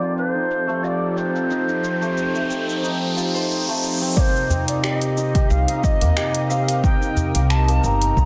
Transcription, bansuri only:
Already playing: D5
0.17 B4
0.30 C5
0.83 D5 D#5
1.17 C5
4.15 D5
4.19 C5
4.67 D5
4.82 D5
4.95 D#5
5.49 F5
5.83 D#5
6.49 F5
6.83 G5
7.50 A5
7.84 A#5

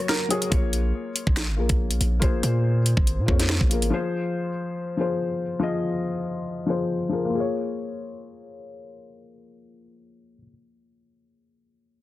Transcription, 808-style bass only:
0.52 A#1
1.27 A#1
1.48 G#1
1.58 A#1
1.69 A#1
2.01 A#1
2.22 A#1
2.43 A#2
2.97 G#1
3.18 A#2
3.28 F2
3.61 A#1
3.82 G#1

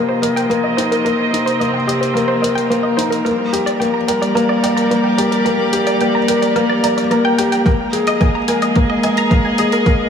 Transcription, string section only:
Already playing: C3 C4 F4 D#5 G5
0.38 A#4
3.26 G3
3.74 G4
4.04 D5
7.65 G#3
7.95 D#5
8.00 G#4

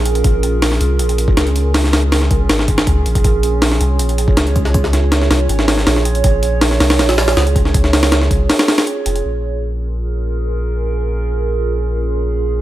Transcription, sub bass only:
Already playing: A#1
0.24 A#1
0.80 C2
0.99 A#1
1.37 C#2
2.31 C2
2.49 G#1
2.87 C#2
3.05 A#1
3.24 A#1
3.81 C2
3.99 A#1
4.36 C#2
5.30 C2
5.49 G#1
5.87 A#1
6.24 A#1
6.80 C2
6.99 A#1
7.36 C#2
8.31 C2
9.06 F1
9.25 A#1

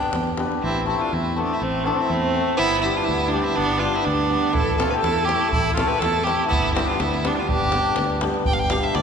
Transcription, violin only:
Already playing: G5
0.62 E4
0.89 E4
1.01 F4
1.13 E4
1.36 D4 E4
1.53 E4
1.63 C4
1.86 D4
1.92 C4 D4
2.01 E4
2.09 C4
2.57 E4
2.81 E4
2.97 F4
3.04 E4
3.27 D4
3.44 E4
3.56 D4
3.79 F4
3.95 E4
4.05 D4
4.53 A4
4.78 A4
4.90 B4
4.99 A4
5.25 G4
5.48 A4
5.73 A4
5.88 B4
5.99 A4
6.23 G4
6.48 E4
6.74 E4
6.88 F4
7.00 E4
7.27 D4
7.39 F4
7.48 G4
8.46 G5
8.53 F5
8.59 G5
8.70 F5
8.83 E5
8.95 D5

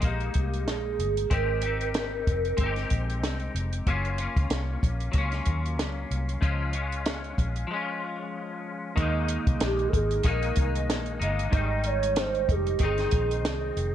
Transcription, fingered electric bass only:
0.03 A#1
0.35 C2
0.67 A#1
0.99 G1
1.31 G#1
2.27 F1
2.58 G1
2.91 A#1
3.23 C2
3.55 F1
3.87 F#1
4.37 C#2
4.50 C2
4.83 A#1
5.14 C#2
5.47 D#2
5.79 C#2
6.11 C2
6.42 C#2
7.38 A#1
8.97 D#2
9.47 C2
9.61 A#1
9.93 G#1
10.25 A#1
10.57 C2
10.89 A#1
11.21 G1
11.53 G#1
12.49 F1
12.80 G1
13.13 A#1
13.45 C2
13.77 F1

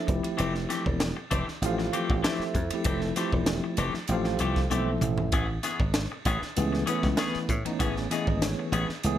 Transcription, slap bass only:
0.09 F1
0.39 F1
0.86 E1
1.31 F1
1.62 A1
2.10 A1
2.40 muted slap bass stroke
2.55 F2
2.70 muted slap bass stroke
2.85 F1
3.33 E1
3.78 F1
4.09 A1
4.41 C2
4.71 B1
5.01 A1
5.32 A1
5.80 G#1
6.26 A1
6.42 muted slap bass stroke
6.57 C#2
7.03 C#2
7.35 muted slap bass stroke
7.49 A2
7.66 muted slap bass stroke
7.80 A1
8.27 G#1
8.72 A1
9.04 C#2

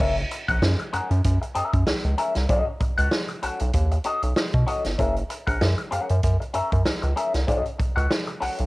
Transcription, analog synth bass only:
0.00 F#1
0.49 A#1
0.62 F#2
0.93 F#2
1.11 F#2
1.25 F#2
1.55 F#2
1.73 F#2
1.86 C#2
2.04 C#2
2.36 C2
2.49 B1
2.98 C#2
3.43 B1
3.61 B1
3.74 D#2
4.23 B1
4.54 B2
4.86 G1
4.99 F#1
5.47 A#1
5.61 F#2
5.92 F#2
6.10 F#2
6.24 F#2
6.55 F#2
6.73 F#2
6.86 C#2
7.03 C#2
7.34 C2
7.48 B1
7.97 C#2
8.42 B1
8.60 B1

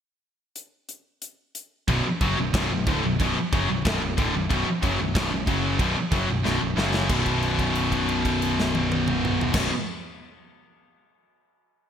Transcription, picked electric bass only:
1.88 B0
2.04 muted picked electric bass stroke
2.21 F#1
2.38 B0
2.54 B0
2.71 B0
2.87 D1
3.03 B0
3.20 B0
3.37 muted picked electric bass stroke
3.53 F#1
3.69 B0
3.86 B0
4.02 B0
4.18 D1
4.34 B0
4.51 B0
4.66 muted picked electric bass stroke
4.83 F#1
5.00 B0
5.15 B0
5.32 B0
5.47 F#1
5.79 B0
5.97 muted picked electric bass stroke
6.12 F#1
6.30 B0
6.45 B0
6.61 B0
6.78 F#1
7.10 B0
9.55 B0

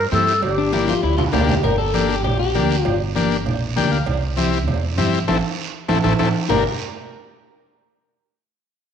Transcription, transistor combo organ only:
0.11 C4 E4 G4
0.72 A#3 D4 G4
1.32 A#3 D4 G4
1.94 A#3 D4 G4
2.55 A#3 D4 G4
3.15 A#3 D4 G4
3.76 A#3 D4 G4 G5
3.92 F5
4.37 C4 E4 G4
4.97 C4 E4 G4
5.28 C4 E4 A4
5.89 C4 E4 A4
6.03 C4 E4 A4
6.19 C4 E4 A4
6.50 D4 G4 A#4

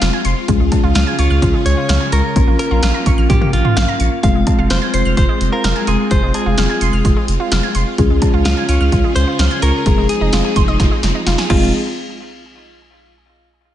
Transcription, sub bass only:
0.02 F1
0.25 F1
0.48 C#2
0.60 C#2
0.84 C#2
0.95 C#2
1.19 C#2
1.31 C#2
1.42 C#2
1.66 C#2
1.89 C#2
2.12 C#2
2.36 A#1
2.48 A#1
2.71 A#1
2.83 A#1
3.06 A#1
3.18 A#1
3.30 A#1
3.53 A#1
3.76 A#1
4.00 A#1
4.23 F1
4.35 F1
4.58 F1
4.70 F1
4.94 F1
5.05 F1
5.17 F1
5.41 F1
5.64 F1
5.88 F1
6.11 F1
6.23 F1
6.46 F1
6.58 F1
6.81 F1
6.93 F1
7.05 F1
7.28 F1
7.52 F1
7.75 F1
7.98 C#2
8.10 C#2
8.34 C#2
8.45 C#2
8.69 C#2
8.80 C#2
8.92 C#2
9.16 C#2
9.39 C#2
9.62 C#2
9.86 F1
9.98 F1
10.21 F1
10.33 F1
10.56 F1
10.68 F1
10.80 F1
11.03 F1
11.27 F1
11.50 F1

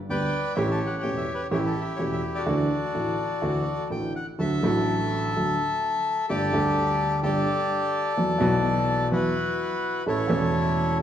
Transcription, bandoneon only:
0.10 B4 D5 G5
0.55 G4 C#5 E5
0.72 A5
0.86 F#5
1.03 G5
1.17 E5
1.35 B4
1.51 E4 G4 C#5
1.66 A4
1.81 E5
1.96 C#5
2.13 E5
2.35 F#4 A4 D5
3.91 G5
4.16 F#5
4.39 A4 E5
6.29 G4 A4 D5
7.23 G4 A4 D5
9.12 E4 F#4 B4
10.07 E4 A4 C#5

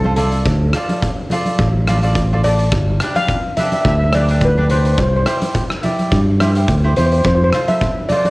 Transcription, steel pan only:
Already playing: A4
0.17 A4
2.44 D5
3.16 F5
3.57 E5
3.65 E5
3.73 E5
3.81 E5
3.88 E5
3.98 E5
4.04 E5
4.15 D5
4.45 B4
4.71 C5
4.86 C5
4.93 C5
5.02 C5
5.09 C5
5.16 C5
6.97 C5
7.06 C5
7.13 C5
7.18 C5
7.26 C5
7.35 C5
7.44 C5
7.50 C5
7.68 E5
8.09 D5
8.17 D5
8.26 D5

